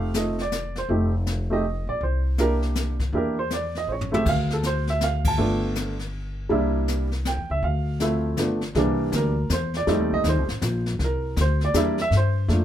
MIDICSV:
0, 0, Header, 1, 4, 480
1, 0, Start_track
1, 0, Tempo, 374065
1, 1145, Time_signature, 3, 2, 24, 8
1, 16227, End_track
2, 0, Start_track
2, 0, Title_t, "Upright piano"
2, 0, Program_c, 0, 0
2, 0, Note_on_c, 0, 57, 54
2, 0, Note_on_c, 0, 60, 53
2, 0, Note_on_c, 0, 63, 52
2, 0, Note_on_c, 0, 67, 58
2, 0, Note_on_c, 0, 77, 77
2, 165, Note_off_c, 0, 57, 0
2, 168, Note_off_c, 0, 77, 0
2, 171, Note_off_c, 0, 60, 0
2, 175, Note_off_c, 0, 63, 0
2, 177, Note_off_c, 0, 67, 0
2, 189, Note_on_c, 0, 57, 51
2, 192, Note_on_c, 0, 60, 42
2, 205, Note_on_c, 0, 63, 44
2, 211, Note_on_c, 0, 65, 52
2, 214, Note_on_c, 0, 75, 77
2, 463, Note_off_c, 0, 57, 0
2, 464, Note_off_c, 0, 60, 0
2, 471, Note_off_c, 0, 63, 0
2, 474, Note_off_c, 0, 65, 0
2, 497, Note_off_c, 0, 75, 0
2, 533, Note_on_c, 0, 74, 77
2, 960, Note_off_c, 0, 74, 0
2, 1003, Note_on_c, 0, 72, 75
2, 1143, Note_on_c, 0, 57, 54
2, 1147, Note_on_c, 0, 60, 49
2, 1155, Note_off_c, 0, 72, 0
2, 1159, Note_on_c, 0, 63, 51
2, 1164, Note_on_c, 0, 67, 60
2, 1420, Note_off_c, 0, 57, 0
2, 1421, Note_off_c, 0, 60, 0
2, 1428, Note_off_c, 0, 63, 0
2, 1430, Note_off_c, 0, 67, 0
2, 1928, Note_on_c, 0, 57, 59
2, 1935, Note_on_c, 0, 60, 53
2, 1944, Note_on_c, 0, 63, 55
2, 1954, Note_on_c, 0, 67, 65
2, 1961, Note_on_c, 0, 75, 91
2, 2085, Note_off_c, 0, 57, 0
2, 2089, Note_off_c, 0, 60, 0
2, 2093, Note_off_c, 0, 63, 0
2, 2098, Note_off_c, 0, 67, 0
2, 2393, Note_off_c, 0, 75, 0
2, 2424, Note_on_c, 0, 74, 81
2, 2585, Note_off_c, 0, 74, 0
2, 2607, Note_on_c, 0, 72, 67
2, 3042, Note_off_c, 0, 72, 0
2, 3055, Note_on_c, 0, 58, 57
2, 3069, Note_on_c, 0, 62, 53
2, 3071, Note_on_c, 0, 64, 50
2, 3079, Note_on_c, 0, 70, 86
2, 3087, Note_on_c, 0, 67, 56
2, 3258, Note_off_c, 0, 70, 0
2, 3784, Note_off_c, 0, 58, 0
2, 3791, Note_off_c, 0, 62, 0
2, 3792, Note_off_c, 0, 64, 0
2, 3800, Note_off_c, 0, 67, 0
2, 4020, Note_on_c, 0, 58, 60
2, 4025, Note_on_c, 0, 62, 51
2, 4033, Note_on_c, 0, 64, 56
2, 4041, Note_on_c, 0, 67, 66
2, 4060, Note_on_c, 0, 70, 70
2, 4297, Note_off_c, 0, 58, 0
2, 4300, Note_off_c, 0, 62, 0
2, 4304, Note_off_c, 0, 64, 0
2, 4308, Note_off_c, 0, 67, 0
2, 4339, Note_off_c, 0, 70, 0
2, 4349, Note_on_c, 0, 72, 80
2, 4507, Note_off_c, 0, 72, 0
2, 4532, Note_on_c, 0, 74, 77
2, 4815, Note_off_c, 0, 74, 0
2, 4846, Note_on_c, 0, 75, 85
2, 4983, Note_on_c, 0, 72, 47
2, 4996, Note_off_c, 0, 75, 0
2, 5012, Note_off_c, 0, 72, 0
2, 5032, Note_on_c, 0, 73, 62
2, 5283, Note_on_c, 0, 57, 64
2, 5289, Note_on_c, 0, 60, 56
2, 5302, Note_on_c, 0, 64, 59
2, 5305, Note_off_c, 0, 73, 0
2, 5310, Note_on_c, 0, 67, 66
2, 5320, Note_on_c, 0, 76, 92
2, 5442, Note_off_c, 0, 57, 0
2, 5444, Note_off_c, 0, 60, 0
2, 5451, Note_off_c, 0, 64, 0
2, 5455, Note_off_c, 0, 67, 0
2, 5473, Note_off_c, 0, 76, 0
2, 5505, Note_on_c, 0, 77, 83
2, 5781, Note_off_c, 0, 77, 0
2, 5817, Note_on_c, 0, 69, 60
2, 5961, Note_off_c, 0, 69, 0
2, 5982, Note_on_c, 0, 72, 80
2, 6260, Note_off_c, 0, 72, 0
2, 6287, Note_on_c, 0, 76, 84
2, 6436, Note_off_c, 0, 76, 0
2, 6462, Note_on_c, 0, 77, 75
2, 6740, Note_off_c, 0, 77, 0
2, 6770, Note_on_c, 0, 81, 88
2, 6902, Note_on_c, 0, 57, 68
2, 6910, Note_on_c, 0, 59, 60
2, 6921, Note_on_c, 0, 62, 58
2, 6931, Note_on_c, 0, 65, 71
2, 7358, Note_off_c, 0, 81, 0
2, 7627, Note_off_c, 0, 57, 0
2, 7631, Note_off_c, 0, 59, 0
2, 7637, Note_off_c, 0, 62, 0
2, 7642, Note_off_c, 0, 65, 0
2, 8333, Note_on_c, 0, 55, 66
2, 8342, Note_on_c, 0, 58, 63
2, 8350, Note_on_c, 0, 62, 61
2, 8360, Note_on_c, 0, 64, 73
2, 9063, Note_off_c, 0, 55, 0
2, 9068, Note_off_c, 0, 58, 0
2, 9072, Note_off_c, 0, 62, 0
2, 9077, Note_off_c, 0, 64, 0
2, 9331, Note_on_c, 0, 79, 69
2, 9615, Note_off_c, 0, 79, 0
2, 9638, Note_on_c, 0, 76, 78
2, 9792, Note_off_c, 0, 76, 0
2, 9805, Note_on_c, 0, 77, 70
2, 10274, Note_on_c, 0, 53, 56
2, 10274, Note_on_c, 0, 57, 54
2, 10285, Note_on_c, 0, 60, 51
2, 10291, Note_on_c, 0, 64, 65
2, 10530, Note_off_c, 0, 77, 0
2, 10729, Note_off_c, 0, 53, 0
2, 10732, Note_off_c, 0, 57, 0
2, 10737, Note_off_c, 0, 60, 0
2, 10740, Note_off_c, 0, 64, 0
2, 10748, Note_on_c, 0, 53, 51
2, 10755, Note_on_c, 0, 57, 47
2, 10765, Note_on_c, 0, 59, 48
2, 10776, Note_on_c, 0, 62, 56
2, 11022, Note_off_c, 0, 53, 0
2, 11026, Note_off_c, 0, 57, 0
2, 11031, Note_off_c, 0, 59, 0
2, 11036, Note_off_c, 0, 62, 0
2, 11237, Note_on_c, 0, 52, 67
2, 11239, Note_on_c, 0, 55, 60
2, 11255, Note_on_c, 0, 58, 67
2, 11258, Note_on_c, 0, 62, 80
2, 11756, Note_on_c, 0, 70, 75
2, 11956, Note_off_c, 0, 52, 0
2, 11957, Note_off_c, 0, 55, 0
2, 11965, Note_off_c, 0, 58, 0
2, 11966, Note_off_c, 0, 62, 0
2, 12178, Note_off_c, 0, 70, 0
2, 12223, Note_on_c, 0, 72, 73
2, 12502, Note_off_c, 0, 72, 0
2, 12534, Note_on_c, 0, 74, 84
2, 12665, Note_on_c, 0, 55, 68
2, 12674, Note_on_c, 0, 57, 59
2, 12684, Note_on_c, 0, 60, 57
2, 12692, Note_on_c, 0, 63, 75
2, 12960, Note_off_c, 0, 74, 0
2, 13008, Note_on_c, 0, 75, 106
2, 13158, Note_off_c, 0, 75, 0
2, 13202, Note_on_c, 0, 72, 76
2, 13390, Note_off_c, 0, 55, 0
2, 13394, Note_off_c, 0, 57, 0
2, 13399, Note_off_c, 0, 60, 0
2, 13403, Note_off_c, 0, 63, 0
2, 13908, Note_off_c, 0, 72, 0
2, 14172, Note_on_c, 0, 70, 72
2, 14587, Note_off_c, 0, 70, 0
2, 14639, Note_on_c, 0, 72, 85
2, 14910, Note_off_c, 0, 72, 0
2, 14944, Note_on_c, 0, 74, 88
2, 15071, Note_on_c, 0, 55, 64
2, 15076, Note_on_c, 0, 58, 59
2, 15080, Note_on_c, 0, 62, 62
2, 15096, Note_on_c, 0, 64, 76
2, 15343, Note_off_c, 0, 55, 0
2, 15346, Note_off_c, 0, 58, 0
2, 15348, Note_off_c, 0, 62, 0
2, 15356, Note_off_c, 0, 64, 0
2, 15366, Note_off_c, 0, 74, 0
2, 15419, Note_on_c, 0, 76, 98
2, 15563, Note_off_c, 0, 76, 0
2, 15615, Note_on_c, 0, 72, 78
2, 16019, Note_on_c, 0, 57, 57
2, 16027, Note_on_c, 0, 58, 45
2, 16035, Note_on_c, 0, 62, 47
2, 16046, Note_on_c, 0, 65, 63
2, 16227, Note_off_c, 0, 57, 0
2, 16227, Note_off_c, 0, 58, 0
2, 16227, Note_off_c, 0, 62, 0
2, 16227, Note_off_c, 0, 65, 0
2, 16227, Note_off_c, 0, 72, 0
2, 16227, End_track
3, 0, Start_track
3, 0, Title_t, "Upright bass"
3, 0, Program_c, 1, 32
3, 0, Note_on_c, 1, 29, 80
3, 1089, Note_off_c, 1, 29, 0
3, 1138, Note_on_c, 1, 29, 81
3, 2356, Note_off_c, 1, 29, 0
3, 2401, Note_on_c, 1, 34, 69
3, 2566, Note_off_c, 1, 34, 0
3, 2575, Note_on_c, 1, 36, 83
3, 3967, Note_off_c, 1, 36, 0
3, 4011, Note_on_c, 1, 40, 83
3, 4925, Note_off_c, 1, 40, 0
3, 4969, Note_on_c, 1, 33, 73
3, 5421, Note_off_c, 1, 33, 0
3, 5459, Note_on_c, 1, 38, 84
3, 6849, Note_off_c, 1, 38, 0
3, 6906, Note_on_c, 1, 31, 86
3, 8293, Note_off_c, 1, 31, 0
3, 8343, Note_on_c, 1, 36, 81
3, 9412, Note_off_c, 1, 36, 0
3, 9453, Note_on_c, 1, 40, 63
3, 9606, Note_off_c, 1, 40, 0
3, 9623, Note_on_c, 1, 37, 69
3, 9772, Note_off_c, 1, 37, 0
3, 9785, Note_on_c, 1, 38, 82
3, 10693, Note_off_c, 1, 38, 0
3, 10737, Note_on_c, 1, 31, 74
3, 11187, Note_off_c, 1, 31, 0
3, 11223, Note_on_c, 1, 36, 86
3, 11689, Note_off_c, 1, 36, 0
3, 11702, Note_on_c, 1, 38, 96
3, 12168, Note_off_c, 1, 38, 0
3, 12185, Note_on_c, 1, 40, 92
3, 12650, Note_off_c, 1, 40, 0
3, 12668, Note_on_c, 1, 41, 84
3, 12817, Note_off_c, 1, 41, 0
3, 12817, Note_on_c, 1, 39, 55
3, 12980, Note_off_c, 1, 39, 0
3, 12990, Note_on_c, 1, 36, 60
3, 13130, Note_off_c, 1, 36, 0
3, 13138, Note_on_c, 1, 39, 91
3, 13314, Note_off_c, 1, 39, 0
3, 13314, Note_on_c, 1, 36, 53
3, 13451, Note_off_c, 1, 36, 0
3, 13458, Note_on_c, 1, 33, 62
3, 13610, Note_off_c, 1, 33, 0
3, 13621, Note_on_c, 1, 34, 91
3, 14088, Note_off_c, 1, 34, 0
3, 14105, Note_on_c, 1, 36, 84
3, 14570, Note_off_c, 1, 36, 0
3, 14583, Note_on_c, 1, 38, 93
3, 15049, Note_off_c, 1, 38, 0
3, 15062, Note_on_c, 1, 40, 85
3, 15528, Note_off_c, 1, 40, 0
3, 15535, Note_on_c, 1, 43, 81
3, 16005, Note_off_c, 1, 43, 0
3, 16021, Note_on_c, 1, 41, 93
3, 16227, Note_off_c, 1, 41, 0
3, 16227, End_track
4, 0, Start_track
4, 0, Title_t, "Drums"
4, 180, Note_on_c, 9, 44, 60
4, 182, Note_on_c, 9, 38, 57
4, 308, Note_off_c, 9, 44, 0
4, 311, Note_off_c, 9, 38, 0
4, 496, Note_on_c, 9, 38, 37
4, 624, Note_off_c, 9, 38, 0
4, 664, Note_on_c, 9, 44, 56
4, 666, Note_on_c, 9, 38, 59
4, 792, Note_off_c, 9, 44, 0
4, 795, Note_off_c, 9, 38, 0
4, 970, Note_on_c, 9, 38, 37
4, 1099, Note_off_c, 9, 38, 0
4, 1142, Note_on_c, 9, 25, 52
4, 1143, Note_on_c, 9, 36, 33
4, 1272, Note_off_c, 9, 36, 0
4, 1623, Note_on_c, 9, 44, 47
4, 1625, Note_on_c, 9, 38, 57
4, 1751, Note_off_c, 9, 44, 0
4, 1754, Note_off_c, 9, 38, 0
4, 2579, Note_off_c, 9, 25, 0
4, 2579, Note_on_c, 9, 25, 46
4, 2579, Note_on_c, 9, 36, 33
4, 2707, Note_off_c, 9, 36, 0
4, 3053, Note_on_c, 9, 44, 50
4, 3056, Note_on_c, 9, 38, 54
4, 3182, Note_off_c, 9, 44, 0
4, 3184, Note_off_c, 9, 38, 0
4, 3366, Note_on_c, 9, 38, 35
4, 3495, Note_off_c, 9, 38, 0
4, 3533, Note_on_c, 9, 44, 58
4, 3535, Note_on_c, 9, 38, 60
4, 3661, Note_off_c, 9, 44, 0
4, 3664, Note_off_c, 9, 38, 0
4, 3845, Note_on_c, 9, 36, 49
4, 3847, Note_on_c, 9, 38, 35
4, 3974, Note_off_c, 9, 36, 0
4, 3975, Note_off_c, 9, 38, 0
4, 4019, Note_on_c, 9, 36, 32
4, 4021, Note_off_c, 9, 25, 0
4, 4021, Note_on_c, 9, 25, 50
4, 4147, Note_off_c, 9, 36, 0
4, 4497, Note_on_c, 9, 44, 49
4, 4499, Note_on_c, 9, 38, 54
4, 4625, Note_off_c, 9, 44, 0
4, 4628, Note_off_c, 9, 38, 0
4, 4813, Note_on_c, 9, 38, 35
4, 4941, Note_off_c, 9, 38, 0
4, 5145, Note_on_c, 9, 43, 56
4, 5274, Note_off_c, 9, 43, 0
4, 5311, Note_on_c, 9, 43, 73
4, 5439, Note_off_c, 9, 43, 0
4, 5466, Note_on_c, 9, 36, 73
4, 5467, Note_off_c, 9, 25, 0
4, 5467, Note_on_c, 9, 25, 43
4, 5467, Note_on_c, 9, 49, 70
4, 5595, Note_off_c, 9, 36, 0
4, 5596, Note_off_c, 9, 49, 0
4, 5779, Note_on_c, 9, 38, 43
4, 5908, Note_off_c, 9, 38, 0
4, 5942, Note_on_c, 9, 44, 45
4, 5945, Note_on_c, 9, 38, 56
4, 6071, Note_off_c, 9, 44, 0
4, 6073, Note_off_c, 9, 38, 0
4, 6252, Note_on_c, 9, 38, 39
4, 6380, Note_off_c, 9, 38, 0
4, 6425, Note_on_c, 9, 44, 66
4, 6427, Note_on_c, 9, 38, 64
4, 6553, Note_off_c, 9, 44, 0
4, 6556, Note_off_c, 9, 38, 0
4, 6730, Note_on_c, 9, 51, 67
4, 6733, Note_on_c, 9, 36, 75
4, 6859, Note_off_c, 9, 51, 0
4, 6862, Note_off_c, 9, 36, 0
4, 6911, Note_off_c, 9, 25, 0
4, 6911, Note_on_c, 9, 25, 41
4, 7382, Note_on_c, 9, 44, 56
4, 7385, Note_on_c, 9, 38, 53
4, 7511, Note_off_c, 9, 44, 0
4, 7513, Note_off_c, 9, 38, 0
4, 7691, Note_on_c, 9, 38, 38
4, 7819, Note_off_c, 9, 38, 0
4, 8346, Note_on_c, 9, 36, 33
4, 8350, Note_off_c, 9, 25, 0
4, 8350, Note_on_c, 9, 25, 41
4, 8474, Note_off_c, 9, 36, 0
4, 8827, Note_on_c, 9, 44, 55
4, 8830, Note_on_c, 9, 38, 54
4, 8955, Note_off_c, 9, 44, 0
4, 8958, Note_off_c, 9, 38, 0
4, 9131, Note_on_c, 9, 38, 36
4, 9259, Note_off_c, 9, 38, 0
4, 9304, Note_on_c, 9, 44, 52
4, 9307, Note_on_c, 9, 38, 60
4, 9433, Note_off_c, 9, 44, 0
4, 9435, Note_off_c, 9, 38, 0
4, 9787, Note_on_c, 9, 36, 35
4, 9789, Note_off_c, 9, 25, 0
4, 9789, Note_on_c, 9, 25, 51
4, 9915, Note_off_c, 9, 36, 0
4, 10263, Note_on_c, 9, 44, 49
4, 10265, Note_on_c, 9, 38, 58
4, 10391, Note_off_c, 9, 44, 0
4, 10393, Note_off_c, 9, 38, 0
4, 10740, Note_on_c, 9, 44, 54
4, 10743, Note_on_c, 9, 38, 64
4, 10868, Note_off_c, 9, 44, 0
4, 10871, Note_off_c, 9, 38, 0
4, 11051, Note_on_c, 9, 38, 37
4, 11180, Note_off_c, 9, 38, 0
4, 11227, Note_on_c, 9, 36, 24
4, 11228, Note_off_c, 9, 25, 0
4, 11228, Note_on_c, 9, 25, 51
4, 11228, Note_on_c, 9, 38, 45
4, 11355, Note_off_c, 9, 36, 0
4, 11356, Note_off_c, 9, 38, 0
4, 11707, Note_on_c, 9, 36, 21
4, 11707, Note_on_c, 9, 44, 56
4, 11710, Note_on_c, 9, 38, 62
4, 11835, Note_off_c, 9, 44, 0
4, 11836, Note_off_c, 9, 36, 0
4, 11838, Note_off_c, 9, 38, 0
4, 12187, Note_on_c, 9, 44, 63
4, 12188, Note_on_c, 9, 36, 25
4, 12189, Note_on_c, 9, 38, 67
4, 12315, Note_off_c, 9, 44, 0
4, 12317, Note_off_c, 9, 36, 0
4, 12318, Note_off_c, 9, 38, 0
4, 12495, Note_on_c, 9, 38, 38
4, 12623, Note_off_c, 9, 38, 0
4, 12666, Note_off_c, 9, 25, 0
4, 12666, Note_on_c, 9, 25, 48
4, 12666, Note_on_c, 9, 38, 46
4, 12667, Note_on_c, 9, 36, 20
4, 12794, Note_off_c, 9, 38, 0
4, 12796, Note_off_c, 9, 36, 0
4, 13138, Note_on_c, 9, 44, 55
4, 13141, Note_on_c, 9, 38, 59
4, 13146, Note_on_c, 9, 36, 22
4, 13267, Note_off_c, 9, 44, 0
4, 13269, Note_off_c, 9, 38, 0
4, 13274, Note_off_c, 9, 36, 0
4, 13455, Note_on_c, 9, 38, 40
4, 13584, Note_off_c, 9, 38, 0
4, 13624, Note_on_c, 9, 44, 56
4, 13627, Note_on_c, 9, 36, 29
4, 13627, Note_on_c, 9, 38, 69
4, 13752, Note_off_c, 9, 44, 0
4, 13755, Note_off_c, 9, 36, 0
4, 13755, Note_off_c, 9, 38, 0
4, 13936, Note_on_c, 9, 38, 39
4, 14064, Note_off_c, 9, 38, 0
4, 14107, Note_off_c, 9, 25, 0
4, 14107, Note_on_c, 9, 25, 44
4, 14107, Note_on_c, 9, 38, 46
4, 14108, Note_on_c, 9, 36, 23
4, 14236, Note_off_c, 9, 36, 0
4, 14236, Note_off_c, 9, 38, 0
4, 14585, Note_on_c, 9, 44, 59
4, 14587, Note_on_c, 9, 36, 26
4, 14588, Note_on_c, 9, 38, 63
4, 14714, Note_off_c, 9, 44, 0
4, 14715, Note_off_c, 9, 36, 0
4, 14716, Note_off_c, 9, 38, 0
4, 14895, Note_on_c, 9, 38, 39
4, 15023, Note_off_c, 9, 38, 0
4, 15065, Note_on_c, 9, 44, 68
4, 15066, Note_on_c, 9, 36, 25
4, 15068, Note_on_c, 9, 38, 65
4, 15194, Note_off_c, 9, 36, 0
4, 15194, Note_off_c, 9, 44, 0
4, 15196, Note_off_c, 9, 38, 0
4, 15371, Note_on_c, 9, 38, 39
4, 15499, Note_off_c, 9, 38, 0
4, 15546, Note_off_c, 9, 25, 0
4, 15546, Note_on_c, 9, 25, 57
4, 15546, Note_on_c, 9, 36, 21
4, 15546, Note_on_c, 9, 38, 47
4, 15674, Note_off_c, 9, 36, 0
4, 15675, Note_off_c, 9, 38, 0
4, 16025, Note_on_c, 9, 36, 24
4, 16026, Note_on_c, 9, 38, 44
4, 16153, Note_off_c, 9, 36, 0
4, 16154, Note_off_c, 9, 38, 0
4, 16227, Note_off_c, 9, 25, 0
4, 16227, End_track
0, 0, End_of_file